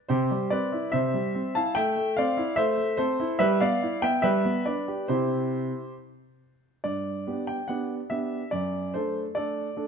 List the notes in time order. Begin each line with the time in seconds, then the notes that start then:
0.09 C3 G4 C5
0.31 G3
0.50 C4 B4 D5
0.72 E4
0.92 C3 C5 E5
1.14 G3
1.35 C4
1.55 E4 F5 A5
1.75 A3 E5 G5
1.97 A3
2.17 C4 D5 F5
2.37 E4
2.56 A3 C5 E5
2.77 A3
2.97 C4 A4 C5
3.20 E4
3.39 G3 B4 E5
3.60 B3 D5 F5
3.82 E4
4.02 B3 E5 G5
4.22 G3 B4 E5
4.45 B3
4.66 D4 B4 D5
4.88 G4
5.08 C3 E4 G4 C5
6.84 G2 D5
7.27 B3 D4 G4
7.47 G5
7.68 B3 D4 G4 F#5
8.10 B3 D4 G4 E5
8.51 F#2 D5
8.94 A3 D4 A4 C5
9.35 A3 D4 A4 D5
9.76 A3 D4 A4